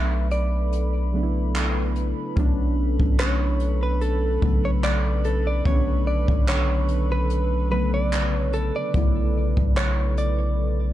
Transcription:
Already playing: 808-style bass B1, synth keys F#3 A3 B3 D4, analog synth pad A4 B4 B5, clean electric guitar E5
0.31 clean electric guitar D5, closed hi-hat
0.73 closed hi-hat
1.12 synth keys C#3 F#3 A3 B3 D4
1.23 synth keys E4
1.55 clap, closed hi-hat
1.96 closed hi-hat
2.36 808-style bass B1, synth keys F#3 A3 B3 C#4 D4, kick, closed hi-hat
3.00 808-style bass B1, kick
3.19 clean electric guitar C#5, clap, closed hi-hat
3.60 closed hi-hat
3.83 clean electric guitar B4
4.01 clean electric guitar A4, closed hi-hat
4.41 808-style bass B1, synth keys C#3 F#3 A3 B3, kick
4.65 clean electric guitar C#5
4.83 clean electric guitar D5, clap, closed hi-hat
5.24 clean electric guitar A4, closed hi-hat
5.47 clean electric guitar D5
5.65 808-style bass B1, synth keys D3 F#3 A3 B3 C#4, clean electric guitar C#5, kick, closed hi-hat
5.75 synth keys D4
6.07 clean electric guitar D5
6.28 808-style bass B1, kick
6.48 clean electric guitar C#5, clap, closed hi-hat
6.88 closed hi-hat
7.12 clean electric guitar B4
7.30 closed hi-hat
7.70 synth keys C#3 F#3 A3 B3, clean electric guitar B4
7.94 clean electric guitar D5
8.12 clap, closed hi-hat
8.38 clean electric guitar C#5
8.53 clean electric guitar A4, closed hi-hat
8.76 clean electric guitar D5
8.93 808-style bass B1, synth keys C#3 F#3 A3 B3 E4, kick, closed hi-hat
9.57 808-style bass B1, kick
9.77 clean electric guitar C#5, clap, closed hi-hat
10.17 clean electric guitar D5, closed hi-hat

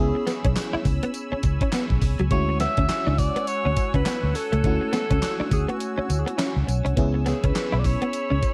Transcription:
Already playing: fingered electric bass C#2, fm electric piano B3, analog synth pad C#5 G#5 B5 E6
0.00 fm electric piano C#4 E4 G#4, alto saxophone G#4
0.15 muted clean electric guitar stroke
0.27 clean electric guitar B3, snare, closed hi-hat, tambourine
0.45 fingered electric bass B1, clean electric guitar C#4, kick, closed hi-hat
0.56 snare, clap, closed hi-hat, tambourine
0.73 clean electric guitar E4, muted fingered electric bass stroke
0.85 fingered electric bass C#2, muted clean electric guitar stroke, kick, open hi-hat, tambourine
1.03 clean electric guitar B3, closed hi-hat
1.14 closed hi-hat, tambourine
1.32 clean electric guitar C#4, muted fingered electric bass stroke
1.43 fingered electric bass C#2, muted clean electric guitar stroke, kick, closed hi-hat, tambourine
1.61 clean electric guitar C#4, kick, closed hi-hat
1.72 clean electric guitar B3, snare, clap, closed hi-hat, tambourine
1.90 fingered electric bass B1, kick
2.02 fingered electric bass C2, muted clean electric guitar stroke, kick, open hi-hat, tambourine
2.19 fingered electric bass C#2, clean electric guitar F#3, closed hi-hat
2.31 fingered electric bass D2, fm electric piano G#3 C#4 E4 F#4, alto saxophone C#5, analog synth pad F#5 E6, kick, closed hi-hat
2.49 muted clean electric guitar stroke
2.60 clean electric guitar B3, alto saxophone E5, snare, closed hi-hat, tambourine
2.77 fingered electric bass D2, clean electric guitar C#4, kick, closed hi-hat
2.89 snare, clap, closed hi-hat, tambourine
3.07 fingered electric bass C#2, clean electric guitar D4
3.18 alto saxophone D5, muted clean electric guitar stroke, kick, open hi-hat, tambourine
3.36 clean electric guitar B3, closed hi-hat
3.47 alto saxophone C#5, closed hi-hat, tambourine
3.65 fingered electric bass D2, clean electric guitar C#4
3.76 muted clean electric guitar stroke, kick, closed hi-hat, tambourine
3.94 fingered electric bass C#2, clean electric guitar C#4, alto saxophone B4, kick, closed hi-hat
4.06 clean electric guitar B3, snare, clap, closed hi-hat, tambourine
4.23 fingered electric bass D2
4.35 alto saxophone A4, muted clean electric guitar stroke, open hi-hat, tambourine
4.52 fingered electric bass C#2, clean electric guitar A3, closed hi-hat
4.64 fingered electric bass D2, fm electric piano A3 C#4 E4 F#4, kick, closed hi-hat
4.81 muted clean electric guitar stroke
4.93 clean electric guitar B3, alto saxophone A4, snare, closed hi-hat, tambourine
5.11 fingered electric bass C#2, clean electric guitar C#4, kick, closed hi-hat
5.22 snare, clap, closed hi-hat, tambourine
5.40 clean electric guitar D4, muted fingered electric bass stroke
5.51 fingered electric bass D2, alto saxophone G#4, muted clean electric guitar stroke, kick, closed hi-hat, tambourine
5.68 clean electric guitar B3, alto saxophone F#4, closed hi-hat
5.80 closed hi-hat, tambourine
5.98 clean electric guitar C#4, muted fingered electric bass stroke
6.09 fingered electric bass D2, muted clean electric guitar stroke, closed hi-hat, tambourine
6.19 alto saxophone G#4
6.26 clean electric guitar B3, alto saxophone F#4, closed hi-hat
6.37 clean electric guitar C#4, alto saxophone E4, snare, clap, closed hi-hat, tambourine
6.46 alto saxophone F#4
6.56 fingered electric bass C#2
6.67 fingered electric bass B1, muted clean electric guitar stroke, closed hi-hat, tambourine
6.85 fingered electric bass C2, clean electric guitar C#4, closed hi-hat
6.96 fingered electric bass C#2, fm electric piano B3 C#4 E4 G#4, analog synth pad B5 E6, kick, closed hi-hat
7.14 muted clean electric guitar stroke
7.26 clean electric guitar B3, alto saxophone G#4, snare, closed hi-hat, tambourine
7.44 fingered electric bass C#2, clean electric guitar C#4, alto saxophone B4, kick, closed hi-hat
7.55 snare, clap, closed hi-hat, tambourine
7.72 fingered electric bass B1, clean electric guitar E4
7.79 alto saxophone D5
7.84 alto saxophone C#5, muted clean electric guitar stroke, kick, open hi-hat, tambourine
8.02 clean electric guitar B3, closed hi-hat
8.13 closed hi-hat, tambourine
8.30 fingered electric bass C#2, clean electric guitar C#4
8.42 muted clean electric guitar stroke, kick, closed hi-hat, tambourine

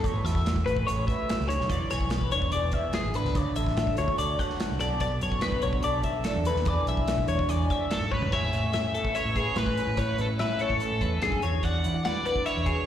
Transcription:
Already playing: clean electric guitar F#3 F#4
0.03 fingered electric bass A1, clean electric guitar A2 A4 C#5, kick, closed hi-hat
0.14 clean electric guitar B4
0.24 fingered electric bass E2, clean electric guitar F#4 E5, snare, closed hi-hat
0.35 kick, snare
0.46 snare, closed hi-hat
0.56 kick
0.65 fingered electric bass A1, clean electric guitar A3 C#4 B4, closed hi-hat
0.77 kick
0.87 fingered electric bass A1, clean electric guitar F#4 C#5, closed hi-hat
1.07 clean electric guitar B4 E5, kick, closed hi-hat
1.29 clean electric guitar C#3, snare, closed hi-hat
1.40 fingered electric bass C#2, snare
1.48 clean electric guitar D3 C#5, closed hi-hat
1.61 fingered electric bass B1, snare
1.69 fingered electric bass E1, clean electric guitar E3 C#5 D5, kick, closed hi-hat
1.90 fingered electric bass B1, clean electric guitar G#4 C#5, snare, closed hi-hat
2.01 kick
2.10 clean electric guitar B4, snare, closed hi-hat
2.21 kick
2.31 fingered electric bass E1, clean electric guitar B3 D4 C#5, closed hi-hat
2.42 kick
2.52 fingered electric bass E1, clean electric guitar G#4 D5, closed hi-hat
2.72 clean electric guitar E5, kick, closed hi-hat
2.76 clean electric guitar E5
2.93 clean electric guitar B2 G#4, snare, closed hi-hat
3.05 fingered electric bass G#1
3.14 clean electric guitar D4 B4, closed hi-hat
3.25 fingered electric bass C#2, snare
3.35 fingered electric bass D2, clean electric guitar D3 C#5 D5, kick, closed hi-hat
3.56 fingered electric bass A1, clean electric guitar A4 E5, closed hi-hat
3.66 kick, snare
3.77 snare, closed hi-hat
3.87 kick
3.97 fingered electric bass D2, clean electric guitar D4 F#4 C#5, closed hi-hat
4.08 kick
4.18 fingered electric bass D2, clean electric guitar A4 D5, closed hi-hat
4.38 clean electric guitar C#5 F#5, kick, closed hi-hat
4.50 snare
4.60 clean electric guitar A2, snare, closed hi-hat
4.72 fingered electric bass C2
4.80 fingered electric bass B1, clean electric guitar B2 A4 D5, closed hi-hat
5.00 clean electric guitar F#4 D5, kick, closed hi-hat
5.21 fingered electric bass F#2, clean electric guitar C#5, closed hi-hat
5.32 kick
5.41 clean electric guitar B3 D4 B4, snare, closed hi-hat
5.52 kick
5.62 fingered electric bass B1, clean electric guitar F#4 C#5, closed hi-hat
5.73 kick
5.83 fingered electric bass B1, clean electric guitar A4 D5, closed hi-hat
6.03 clean electric guitar F#3 E5, kick, closed hi-hat
6.24 clean electric guitar D4 A4, snare, closed hi-hat
6.36 fingered electric bass E2
6.45 clean electric guitar B2 A4 B4, closed hi-hat
6.55 fingered electric bass D#2, snare
6.65 fingered electric bass E2, clean electric guitar E3 G#3 D4 G#4 B4 D5, kick, closed hi-hat
6.87 fingered electric bass B1, clean electric guitar G#4 E5, closed hi-hat
6.97 kick
7.08 snare, closed hi-hat
7.18 kick
7.28 fingered electric bass E2, clean electric guitar G#3 D4 C#5, closed hi-hat
7.39 kick
7.49 fingered electric bass E2, clean electric guitar G#4 D5, closed hi-hat
7.70 clean electric guitar D5 E5, kick, closed hi-hat
7.90 clean electric guitar F#3, overdriven electric guitar A4, snare, closed hi-hat
8.01 fingered electric bass G#2
8.09 clean electric guitar G#3 C#5, kick
8.14 overdriven electric guitar B4
8.21 fingered electric bass C#3, floor tom
8.32 fingered electric bass A2, clean electric guitar A2 G#4 C#5, overdriven electric guitar E5, kick, crash
8.53 fingered electric bass A2, clean electric guitar C#4, snare, closed hi-hat
8.73 clean electric guitar G#4 E5, snare, closed hi-hat
8.94 clean electric guitar A3 A4, closed hi-hat
9.04 clean electric guitar B4, kick
9.15 clean electric guitar C#4 E5, overdriven electric guitar C#5, closed hi-hat
9.25 fingered electric bass A2
9.36 clean electric guitar G#4 B4, kick, closed hi-hat
9.56 fingered electric bass A2, clean electric guitar E3 G#4 B4, overdriven electric guitar B4, snare, closed hi-hat
9.66 kick
9.76 clean electric guitar C#4, closed hi-hat
9.87 fingered electric bass A2
9.97 clean electric guitar A2 E4 C#5, fingered electric bass A2, overdriven electric guitar B4, kick, closed hi-hat
10.18 fingered electric bass A2, clean electric guitar C#4 B4, overdriven electric guitar A4, closed hi-hat
10.39 clean electric guitar E4 E5, overdriven electric guitar B4, snare, closed hi-hat
10.59 clean electric guitar A3 E4 C#5, overdriven electric guitar A4, closed hi-hat
10.70 fingered electric bass A2, kick
10.80 clean electric guitar C#4 A4, closed hi-hat
10.92 fingered electric bass A2
11.01 fingered electric bass E2, clean electric guitar C#3 B4, kick, closed hi-hat
11.21 fingered electric bass F#2, clean electric guitar D3 G#4, snare, closed hi-hat
11.32 kick
11.41 fingered electric bass E2, clean electric guitar E3 F#4 C#5, closed hi-hat
11.63 fingered electric bass E2, clean electric guitar D4 D5, overdriven electric guitar F#5, kick, closed hi-hat
11.84 fingered electric bass E3, clean electric guitar E4, closed hi-hat
11.93 clean electric guitar F#4
12.04 clean electric guitar G#3 B4 F#5, overdriven electric guitar D5, snare, closed hi-hat
12.25 clean electric guitar D4 B4, overdriven electric guitar D5, closed hi-hat
12.36 kick
12.46 clean electric guitar B4 E5, overdriven electric guitar C#5, closed hi-hat
12.57 fingered electric bass E2
12.66 clean electric guitar B2 F#4 G#4, kick, closed hi-hat

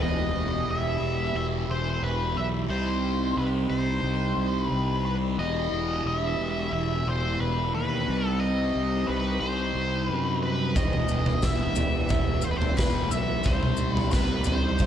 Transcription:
0.00 fingered electric bass E1, distorted electric guitar E2 B2 E3, harmonium G3 E4 G4, lead electric guitar D#5
0.35 fingered electric bass E1
0.68 fingered electric bass E1, lead electric guitar E5
1.01 fingered electric bass E1
1.35 fingered electric bass E1, lead electric guitar E5
1.69 fingered electric bass E1, lead electric guitar C5
2.02 fingered electric bass E1, lead electric guitar B4
2.36 fingered electric bass B1, lead electric guitar E5
2.69 fingered electric bass C2, distorted electric guitar C3 G3 C4, harmonium C4 D#4 G4, lead electric guitar C5
3.37 fingered electric bass C2, lead electric guitar B4
3.70 fingered electric bass C2, lead electric guitar C5
4.03 fingered electric bass C2
4.37 fingered electric bass C2
4.61 lead electric guitar B4
4.72 fingered electric bass C2
5.05 lead electric guitar B4
5.38 fingered electric bass E1, distorted electric guitar E2 B2 E3, harmonium G3 E4, lead electric guitar D#5
5.72 fingered electric bass E1
6.06 fingered electric bass E1, lead electric guitar D#5
6.18 lead electric guitar E5
6.39 fingered electric bass E1
6.73 fingered electric bass E1, lead electric guitar E5
7.07 fingered electric bass E1, lead electric guitar C5
7.40 fingered electric bass E1, lead electric guitar B4
7.74 fingered electric bass D#2, lead electric guitar B4
8.07 fingered electric bass C2, distorted electric guitar C3 G3 C4, harmonium C4 D#4 G4
8.26 lead electric guitar A4
8.40 lead electric guitar D#5
8.76 fingered electric bass C2
9.07 fingered electric bass C2, lead electric guitar B4
9.40 fingered electric bass C2, lead electric guitar C5
9.75 fingered electric bass C2
10.06 fingered electric bass F#2, lead electric guitar B4
10.43 lead electric guitar B4
10.75 fingered electric bass E1, distorted electric guitar E2 B2 E3, harmonium E4, lead electric guitar D#5, kick, floor tom, maracas
10.79 harmonium B3
10.93 mid tom
11.09 fingered electric bass E1, maracas
11.26 floor tom, mid tom
11.42 fingered electric bass E1, lead electric guitar E5, kick, snare, maracas
11.76 fingered electric bass E1, floor tom, maracas
12.09 fingered electric bass E1, lead electric guitar E5, kick, floor tom, maracas
12.42 fingered electric bass E1, lead electric guitar C5, maracas
12.51 lead electric guitar B4
12.57 lead electric guitar C5
12.62 floor tom
12.77 fingered electric bass E1, lead electric guitar B4, kick, snare, maracas
13.11 fingered electric bass B1, lead electric guitar E5, maracas
13.43 fingered electric bass C2, distorted electric guitar C3 G3 C4, harmonium C4 D#4, lead electric guitar C5, kick, floor tom, maracas
13.63 mid tom
13.77 maracas
13.94 lead electric guitar B4, floor tom, mid tom
14.11 fingered electric bass C2, lead electric guitar B4, kick, snare, maracas
14.44 fingered electric bass C2, lead electric guitar C5, floor tom, maracas
14.79 fingered electric bass C2, kick, floor tom, maracas

